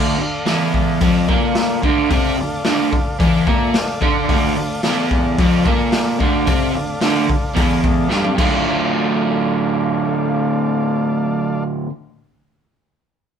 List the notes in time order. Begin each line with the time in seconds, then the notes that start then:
Already playing: D2 D3 A4 D5 F5
0.19 D2 A4 D5 F5
0.46 E2 E3 A4 D5 F5, snare, open hi-hat
0.73 A4 D5 F5, kick
1.01 F2 F3 A4 D5, kick, open hi-hat
1.05 F5
1.28 A#2 A#3 A4 D5, kick
1.32 F5
1.55 A4 D5 F5, snare, open hi-hat
1.82 D2 D3 A4 D5, kick
1.88 F5
2.09 C3 C4 A4 D5, kick, open hi-hat
2.14 F5
2.38 D2 A4 D5
2.43 F5
2.64 D2 D3 A4 D5 F5, snare, open hi-hat
2.91 A4 D5 F5, muted overdriven electric guitar stroke, kick
3.19 E2 E3 A4 D5 F5, kick, open hi-hat
3.47 A#2 A#3 A4 D5 E5, kick
3.73 A4 D5 F5, muted overdriven electric guitar stroke, snare, open hi-hat
4.01 D3 D4 A4 D5 F5, kick
4.27 D2 D3 A4 D5 F5, kick, open hi-hat
4.56 D2 A4 D5 F5
4.83 E2 E3 A4 D5 F5, snare, open hi-hat
5.11 A4 D5 F5, kick
5.38 F2 F3 A4 D5 F5, kick, open hi-hat
5.64 A#2 A#3 A4 D5 F5, kick
5.91 A4 D5 F5, snare, open hi-hat
6.16 D2 A4 D5 F5
6.20 D3, kick
6.45 C3 C4 A4 D5 F5, kick, open hi-hat
6.75 D2 A4 D5 F5
7.01 D2 D3 A4 D5 F5, snare, open hi-hat
7.29 A4 D5 F5, muted overdriven electric guitar stroke, kick
7.55 E2 E3 A4 D5 F5, kick, open hi-hat
7.84 A4 D5 F5, kick
8.09 G2 G3 A4 D5 F5, snare
8.25 high tom
8.36 D2 A2 D3 A3 F4 D5, kick, crash
8.40 A4 F5